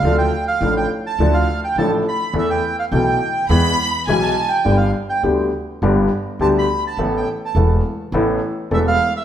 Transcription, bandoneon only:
\new Staff \with { instrumentName = "Bandoneon" } { \time 4/4 \key e \phrygian \tempo 4 = 104 f''16 g''8 f''8 g''8 a''8 f''8 g''16 a''8 b''8 | e''16 g''8 f''16 g''4 r4 gis''16 a''8 g''16~ | g''16 f''8 g''8 r4. r16 a''16 b''8 a''16~ | a''16 g''8 a''8 r4. r16 e''16 f''8 e''16 | }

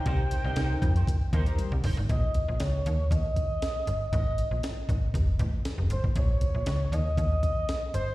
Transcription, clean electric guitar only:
\new Staff \with { instrumentName = "Clean electric guitar" } { \time 4/4 \key bes \dorian \tempo 4 = 118 <ees' bes' c''>16 r16 <ees' bes' c''>16 <ees' bes' ees''>16 <ees' bes' c''>16 r8 <ees' bes' c''>16 r8 <ees' bes' c''>16 <ees' bes' c''>16 r8 <ees' bes' c''>16 r16 | r1 | r1 | r1 | }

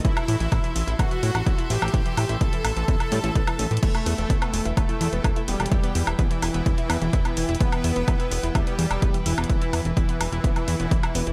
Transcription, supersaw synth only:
\new Staff \with { instrumentName = "Supersaw synth" } { \time 4/4 \key e \minor \tempo 4 = 127 e'2 fis'4. g'8~ | g'4 a'2. | a2 a4. g8~ | g4 e2. |
b2 g4. e8~ | e4 e2. | }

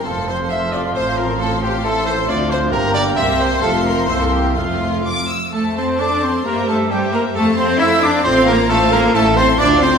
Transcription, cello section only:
\new Staff \with { instrumentName = "Cello section" } { \time 2/4 \key f \major \tempo 4 = 134 f,2 | a,2~ | a,4 d,4 | g,4 c4 |
f,4 c,4 | f,4. r8 | a8 c'8 d'8 c'8 | bes8 a8 g8 bes8 |
a8 c'8 e'8 d'8 | c'8 bes8 a8 bes8 | a8 c'8 d'8 c'8 | }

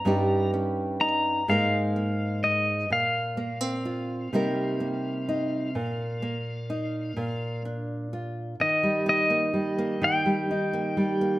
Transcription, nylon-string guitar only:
\new Staff \with { instrumentName = "Nylon-string guitar" } { \time 6/8 \key ees \major \tempo 4. = 42 << { <g des' ees' g'>8 des'8 ees'8 <aes bes ees' bes'>8 bes8 ees'8 | r8 bes16 c'16 f'8 <g bes ees' bes'>8 bes8 ees'8 | r8 bes8 ees'8 r8 d'8 f'8 | r8 ees'16 bes8 bes8. ees'16 bes8 bes16 | } \\ { g,4. aes,4. | bes,4. c4. | bes,4. bes,4. | ees16 g8. g8 ees16 g8. g8 | } >> }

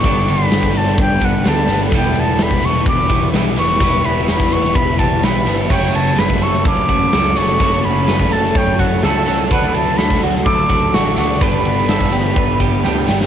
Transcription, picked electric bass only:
\new Staff \with { instrumentName = "Picked electric bass" } { \clef bass \time 4/4 \key g \lydian \tempo 4 = 127 g,,8 g,,8 g,,8 g,,8 g,,4 d,8 g,,8 | e,,8 e,,8 e,,8 e,,8 e,,4 b,,8 e,,8 | e,,8 e,,8 e,,8 e,,8 e,,4 b,,8 g,,8 | fis,,8 fis,,8 fis,,8 fis,,8 fis,,4 cis,8 fis,,8 |
fis,,8 fis,,8 fis,,8 fis,,8 fis,,4 cis,8 cis,8 | d,8 d,8 d,8 d,8 d,4 a,,8 d,8 | g,,8 g,,8 g,,8 g,,8 g,,4 d,8 g,,8 | }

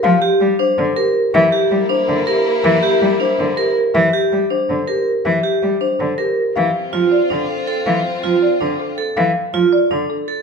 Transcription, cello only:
\new Staff \with { instrumentName = "Cello" } { \clef bass \time 7/8 \key c \mixolydian \tempo 4 = 161 f8 r8 g8 r8 d8 r4 | e8 r8 g8 r8 d8 r4 | e8 r8 g8 r8 d8 r4 | e8 r8 g8 r8 d8 r4 |
e8 r8 g8 r8 d8 r4 | \key d \minor e8 r8 f8 r8 d8 r4 | e8 r8 f8 r8 d8 r4 | e8 r8 f8 r8 d8 r4 | }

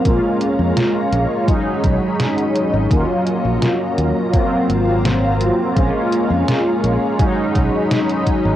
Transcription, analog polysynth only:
\new Staff \with { instrumentName = "Analog polysynth" } { \time 4/4 \key bes \phrygian \tempo 4 = 84 <aes bes des' f'>2 <fis gis cis' dis'>2 | <ges bes des' f'>2 <ges bes c' f'>2 | <aes bes des' f'>2 <fis gis cis' dis'>2 | }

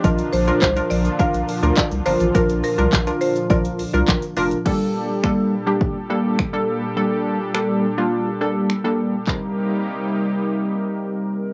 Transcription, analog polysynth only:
\new Staff \with { instrumentName = "Analog polysynth" } { \time 4/4 \key g \minor \tempo 4 = 104 <d' f' bes'>8 r16 <d' f' bes'>16 r16 <d' f' bes'>8 r16 <d' f' bes'>8 r16 <d' f' bes'>8 r16 <d' f' bes'>16 r16 | <d' f' bes'>8 r16 <d' f' bes'>16 r16 <d' f' bes'>8 r16 <d' f' bes'>8 r16 <d' f' bes'>8 r16 <d' f' bes'>16 r16 | <g bes d' a'>8. r16 <g bes d' a'>8 r16 <g bes d' g'>8 r16 <g bes d' a'>8 r16 <g bes d' a'>8 r16 | <g bes d' a'>8. r16 <g bes d' a'>8 r16 <g bes d' f'>8 r16 <g bes d' a'>8 r16 <g bes d' a'>8 r16 |
<g c' ees' bes'>1 | }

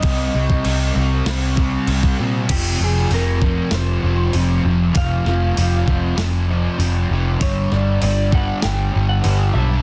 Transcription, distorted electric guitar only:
\new Staff \with { instrumentName = "Distorted electric guitar" } { \clef bass \time 4/4 \key c \phrygian \tempo 4 = 98 <c g c'>8 <g c'>8 <c g c'>8 <g c'>8 <c g c'>8 <g c'>8 <c g c'>8 <g c'>8 | <f, c f>8 <c f>8 <f, c f>8 <c f>8 <f, c f>8 <c f>8 <f, c f>8 <c f>8 | <f, c f>8 <c f>8 <f, c f>8 <c f>8 <f, c f>8 <c f>8 <f, c f>8 <c f>8 | <g, d g>8 <d g>8 <g, d g>8 <d g>8 <g, d g>8 <d g>8 <g, d g>8 <d g>8 | }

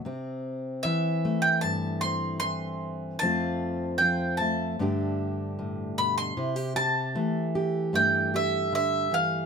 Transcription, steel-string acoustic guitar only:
\new Staff \with { instrumentName = "Steel-string acoustic guitar" } { \time 4/4 \key c \major \tempo 4 = 76 << { c'4 e'8 a4 c'4. | <f a c' f'>4 f'8 a8 <d a d' g'>2 | e'16 g'16 g'8 a8 g'8 a8 g'4. | } \\ { c4 e4 g,4 e4 | f,4 f4 g,4 a,8 b,8 | c4 e4 g,4 d8 e8 | } >> }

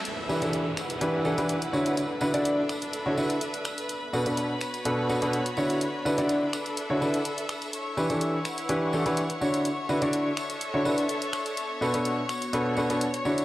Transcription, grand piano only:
\new Staff \with { instrumentName = "Grand piano" } { \time 4/4 \key d \major \tempo 4 = 125 r8 <e d' e' g' b'>16 <e d' e' g' a'>8 r8. <e d' e' g' b'>8 <e d' e' g' a'>16 <e d' e' g' b'>16 r8 <d d' e' fis' cis''>8 | r8 <d d' e' fis' b'>16 <d d' e' fis' d''>8 r4 <d d' e' fis' cis''>16 <d d' e' fis' b'>16 r4 r16 | r8 <b, d' fis' a' b'>16 <b, d' fis' a' b'>8 r8. <b, d' fis' a' b'>8 <b, d' fis' a' b'>16 <b, d' fis' a' b'>16 r8 <d d' e' fis' cis''>8 | r8 <d d' e' fis' b'>16 <d d' e' fis' d''>8 r4 <d d' e' fis' cis''>16 <d d' e' fis' b'>16 r4 r16 |
r8 <e d' e' g' b'>16 <e d' e' g' a'>8 r8. <e d' e' g' b'>8 <e d' e' g' a'>16 <e d' e' g' b'>16 r8 <d d' e' fis' cis''>8 | r8 <d d' e' fis' b'>16 <d d' e' fis' d''>8 r4 <d d' e' fis' cis''>16 <d d' e' fis' b'>16 r4 r16 | r8 <b, d' fis' a' b'>16 <b, d' fis' a' b'>8 r8. <b, d' fis' a' b'>8 <b, d' fis' a' b'>16 <b, d' fis' a' b'>16 r8 <d d' e' fis' cis''>8 | }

